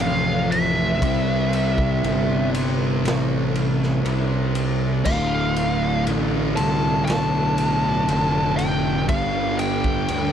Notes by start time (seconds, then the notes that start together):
Already playing: F2 C3 F3
0.00 A1 F2 C3 F3 A3 C4 F4 F5, ride
0.51 E5, ride
1.02 C2 C3 G3 C4 E4 G4 C5, kick, ride
1.53 ride
1.78 kick
2.03 G1, ride
2.54 C3 G3 C4 E4 G4 C5, ride
3.04 A1, ride
3.08 snare
3.56 ride
3.83 snare
4.04 C2 C3 G3 C4 E4 G4 C5, ride
4.55 ride
5.05 D1 D2 A2 D3 A3 F4 F5, kick, crash
5.56 ride
6.07 A1, ride
6.56 C2 D2 A2 D3 A3 F4 A5, ride
7.05 B1 A5, ride
7.10 snare
7.58 ride
8.08 F1 D2 A2 D3 A3 F4, ride
8.57 G5, ride
9.09 G1 G2 D3 G3 B3 D4 G4 F5, kick, ride
9.59 G5, ride
9.84 kick
10.08 D2, ride